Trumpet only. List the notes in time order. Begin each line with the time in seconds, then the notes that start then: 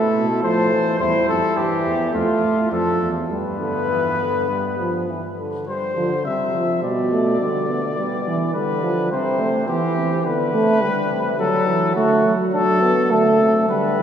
Already playing: A4
0.43 C5
0.99 C5
1.28 A4
1.57 G4
2.13 F4
2.71 A4
3.30 B4
5.67 C5
6.25 E5
6.83 D5
8.54 B4
9.12 C5
9.68 G4
10.25 B4
11.39 A4
11.96 F#4
12.53 A4
13.11 A4
13.69 B4